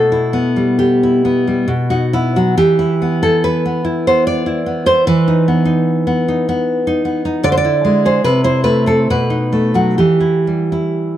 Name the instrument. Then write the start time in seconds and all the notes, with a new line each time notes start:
nylon-string guitar
Already playing: B2 A4
0.12 E4
0.33 B3
0.56 G3
0.79 G4
1.03 E4
1.25 B3
1.47 G3
1.68 B2
1.90 D#4 F#4
2.13 B3 E4
2.36 F#3 F#4
2.58 E3 G4
2.79 E4
3.02 B3
3.23 E4 A4
3.44 B4
3.66 B3
3.85 E4
4.07 B3 C5
4.27 D5
4.46 E4
4.66 B3
4.86 E4 C5
5.07 E3 B4
5.28 D#4
5.48 B3
5.65 D#4
6.07 B3
6.28 D#4
6.49 B3
6.87 D#4
7.05 B3
7.25 D#4
7.43 D3 D5
7.52 C5
7.57 D5
7.65 E4
7.85 G#3
8.05 G#4 C5
8.24 C3 B4
8.44 E4 C5
8.64 A3 B4
8.86 C4 A4
9.10 B2 B4
9.30 D#4
9.53 A3
9.74 F#3 F#4
9.98 E3 G4
10.20 E4
10.47 G3
10.72 E4